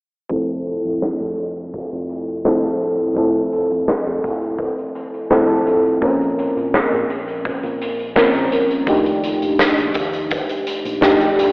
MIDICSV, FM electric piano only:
0, 0, Header, 1, 2, 480
1, 0, Start_track
1, 0, Key_signature, -1, "major"
1, 0, Tempo, 714286
1, 209, Time_signature, 4, 2, 24, 8
1, 7742, End_track
2, 0, Start_track
2, 0, Title_t, "FM electric piano"
2, 0, Program_c, 0, 5
2, 198, Note_on_c, 0, 53, 61
2, 202, Note_on_c, 0, 57, 56
2, 209, Note_on_c, 0, 60, 58
2, 212, Note_on_c, 0, 64, 58
2, 219, Note_on_c, 0, 69, 72
2, 321, Control_c, 0, 64, 127
2, 1616, Note_off_c, 0, 53, 0
2, 1617, Note_off_c, 0, 57, 0
2, 1621, Note_off_c, 0, 60, 0
2, 1623, Note_off_c, 0, 64, 0
2, 1626, Note_off_c, 0, 69, 0
2, 1644, Note_on_c, 0, 53, 73
2, 1647, Note_on_c, 0, 57, 65
2, 1648, Note_on_c, 0, 60, 67
2, 1651, Note_on_c, 0, 64, 67
2, 1653, Note_on_c, 0, 69, 79
2, 2099, Note_off_c, 0, 53, 0
2, 2100, Note_off_c, 0, 57, 0
2, 2101, Note_off_c, 0, 60, 0
2, 2102, Note_off_c, 0, 64, 0
2, 2103, Note_off_c, 0, 69, 0
2, 2116, Note_on_c, 0, 53, 67
2, 2122, Note_on_c, 0, 57, 58
2, 2126, Note_on_c, 0, 60, 59
2, 2130, Note_on_c, 0, 64, 60
2, 2134, Note_on_c, 0, 69, 71
2, 3534, Note_off_c, 0, 53, 0
2, 3537, Note_off_c, 0, 57, 0
2, 3540, Note_off_c, 0, 60, 0
2, 3542, Note_off_c, 0, 64, 0
2, 3544, Note_off_c, 0, 69, 0
2, 3563, Note_on_c, 0, 53, 72
2, 3565, Note_on_c, 0, 57, 69
2, 3568, Note_on_c, 0, 60, 71
2, 3570, Note_on_c, 0, 64, 68
2, 3573, Note_on_c, 0, 69, 82
2, 4018, Note_off_c, 0, 53, 0
2, 4019, Note_off_c, 0, 57, 0
2, 4021, Note_off_c, 0, 60, 0
2, 4022, Note_off_c, 0, 64, 0
2, 4023, Note_off_c, 0, 69, 0
2, 4037, Note_on_c, 0, 53, 68
2, 4043, Note_on_c, 0, 58, 60
2, 4047, Note_on_c, 0, 60, 60
2, 4052, Note_on_c, 0, 61, 61
2, 4056, Control_c, 0, 64, 0
2, 4057, Note_on_c, 0, 70, 71
2, 4192, Control_c, 0, 64, 127
2, 5455, Note_off_c, 0, 53, 0
2, 5458, Note_off_c, 0, 58, 0
2, 5460, Note_off_c, 0, 60, 0
2, 5463, Note_off_c, 0, 61, 0
2, 5465, Note_off_c, 0, 70, 0
2, 5482, Note_on_c, 0, 53, 75
2, 5486, Note_on_c, 0, 58, 70
2, 5488, Note_on_c, 0, 60, 69
2, 5489, Note_on_c, 0, 61, 69
2, 5493, Note_on_c, 0, 70, 80
2, 5938, Note_off_c, 0, 53, 0
2, 5940, Note_off_c, 0, 58, 0
2, 5940, Note_off_c, 0, 60, 0
2, 5941, Note_off_c, 0, 61, 0
2, 5943, Note_off_c, 0, 70, 0
2, 5956, Note_on_c, 0, 53, 70
2, 5962, Note_on_c, 0, 57, 61
2, 5966, Note_on_c, 0, 62, 64
2, 5972, Note_on_c, 0, 63, 63
2, 5977, Note_on_c, 0, 67, 74
2, 5978, Control_c, 0, 64, 0
2, 6116, Control_c, 0, 64, 127
2, 7375, Note_off_c, 0, 53, 0
2, 7378, Note_off_c, 0, 57, 0
2, 7380, Note_off_c, 0, 62, 0
2, 7383, Note_off_c, 0, 63, 0
2, 7385, Note_off_c, 0, 67, 0
2, 7400, Note_on_c, 0, 53, 79
2, 7401, Note_on_c, 0, 57, 75
2, 7404, Note_on_c, 0, 62, 71
2, 7408, Note_on_c, 0, 63, 72
2, 7410, Note_on_c, 0, 67, 84
2, 7742, Note_off_c, 0, 53, 0
2, 7742, Note_off_c, 0, 57, 0
2, 7742, Note_off_c, 0, 62, 0
2, 7742, Note_off_c, 0, 63, 0
2, 7742, Note_off_c, 0, 67, 0
2, 7742, End_track
0, 0, End_of_file